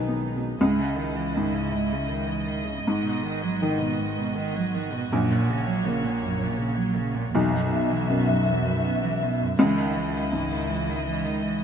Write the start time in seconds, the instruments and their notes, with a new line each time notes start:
Already playing: felt piano B1 B3 C#4 D#4 G#4, double bass B1, cello D#3, string section G#3 D#4 B4
0.08 felt piano B3
0.36 felt piano B2
0.59 double bass C#2, felt piano C#2, cello G#2, string section G#3 E4 D#5
0.79 cello C#3
0.97 cello D#3
1.16 cello E3
1.34 felt piano G#2, cello D#3
1.55 cello C#3
1.73 cello G#2
1.92 cello C#3
2.10 cello D#3
2.27 cello E3
2.46 cello D#3
2.65 cello C#3
2.85 double bass G#1, cello G#2, felt piano G#2, string section B3 F#4
3.03 cello B2
3.24 cello D#3
3.43 cello F#3
3.62 felt piano D#3, cello D#3
3.80 cello B2
3.99 cello G#2
4.18 cello B2
4.36 cello D#3
4.56 cello F#3
4.74 cello D#3
4.93 cello B2
5.11 double bass A#1, felt piano A#1, cello F#2, string section A#3 C#5
5.31 cello A#2
5.49 cello C#3
5.67 cello F#3
5.86 felt piano A#2, cello C#3
6.04 cello A#2
6.23 cello F#2
6.42 cello A#2
6.58 cello C#3
6.76 cello F#3
6.96 cello C#3
7.15 cello A#2
7.32 double bass B1, felt piano B1, cello E2
7.36 string section B3 F#4 E5
7.52 cello F#2
7.71 cello B2
7.90 cello E3
8.09 felt piano F#2, cello B2
8.28 cello F#2
8.48 cello E2
8.66 cello F#2
8.84 cello B2
9.01 cello E3
9.22 cello B2
9.42 cello F#2
9.57 double bass C#2, felt piano C#2, cello E3, string section G#3 E4 D#5
9.76 cello D#3
9.96 cello E3
10.13 cello D#3
10.32 felt piano G#2, cello E3
10.51 cello D#3
10.69 cello E3
10.89 cello D#3
11.06 cello E3
11.25 cello D#3
11.42 cello E3